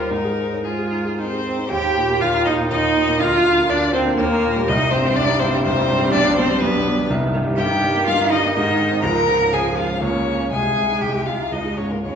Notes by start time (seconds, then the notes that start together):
Already playing: D#2 G3 F4 G4 A#4 C5
0.00 A#4
0.10 G#2 G#3 D#4 A#4
0.25 G#4
0.39 C5
0.53 C#5
0.64 G#3 F4 G#4 C5
0.79 G#4
0.92 D#4
1.05 G#4
1.17 C4 D#4 A#4 C5
1.31 G#4
1.44 C4 C5
1.57 D#4
1.69 D#2 G4 G5
1.84 D#4
1.97 A#2
2.09 A#3
2.20 D#2 F4 F5
2.34 D#4
2.45 A#2 D#4 D#5
2.60 A#3
2.70 D#2 D#4 D#5
2.83 D#4
2.96 A#2
3.08 A#3
3.20 D2 F4 F5
3.33 F4
3.45 D3
3.58 A#3
3.69 D2 D4 D5
3.82 F4
3.93 D3 C4 C5
4.06 A#3
4.17 D#2 A#3 A#4
4.32 D#4
4.44 A#2
4.56 G3
4.66 C2 G3 D#4 D#5
4.81 D#4
4.91 G2 C4 C5
5.06 G3
5.16 C2 D4 D5
5.28 D#4
5.39 G2 C4 C5
5.53 G3
5.64 C2 C4 C5
5.79 D#4
5.91 G2
6.02 G3
6.12 B1 D4 D5
6.25 D4
6.36 B2 C4 C5
6.50 G3
6.60 B1 B3 B4
6.74 D4
6.86 B2
6.98 G3
7.07 C2 D#3
7.24 D#4
7.35 G2
7.47 G3
7.56 G2 D#3 G4 G5
7.70 D#4
7.83 G3
7.95 A#3
8.05 G2 F4 F5
8.21 D#4
8.30 G3 D#4 D#5
8.44 A#3
8.54 G#2 D#3 D#4 D#5
8.68 D#4
8.79 D#3
8.91 C4
9.03 C#2 F3 A#4 A#5
9.15 F4
9.28 G#2
9.41 C#4
9.52 C#2 F3 G#4 G#5
9.66 F4
9.77 G#2 F4 F5
9.89 C#4
10.01 C#2 A#3 C#4 C#5
10.14 F4
10.27 C#3
10.39 C#4
10.51 C2 G#3 G#4 G#5
10.63 G#4
10.76 C3
10.90 D#4
11.01 C2 G4 G5
11.14 G#4
11.26 C3 F4 F5
11.39 D#4
11.51 C#2 G#3 D#4 D#5
11.65 G#4
11.77 G#2 C#4 C#5
11.92 A#3 F4 A#4
12.03 D#2 G#3 C#4 C#5